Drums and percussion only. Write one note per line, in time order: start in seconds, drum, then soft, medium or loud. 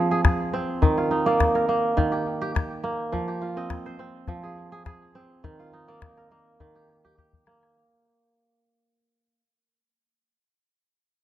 0.25 calabash thump medium
0.25 calabash click medium
0.83 calabash thump medium
0.98 calabash click soft
1.27 calabash click soft
1.40 calabash thump medium
1.40 calabash click medium
1.56 calabash click soft
1.98 calabash thump medium
1.98 calabash click soft
2.14 calabash click soft
2.56 calabash thump medium
2.56 calabash click medium
3.14 calabash thump medium
3.28 calabash click soft
3.57 calabash click soft
3.70 calabash thump medium
3.70 calabash click medium
3.86 calabash click soft
4.28 calabash thump medium
4.28 calabash click soft
4.43 calabash click soft
4.86 calabash thump medium
4.86 calabash click medium
5.44 calabash thump medium
5.44 calabash click soft
5.74 calabash click soft
5.89 calabash click soft
6.02 calabash thump medium
6.02 calabash click medium
6.17 calabash click soft
6.60 calabash thump medium
6.76 calabash click soft
6.89 calabash click soft
7.05 calabash thump soft
7.18 calabash thump soft
7.33 calabash thump soft
7.47 calabash click medium
7.63 calabash click soft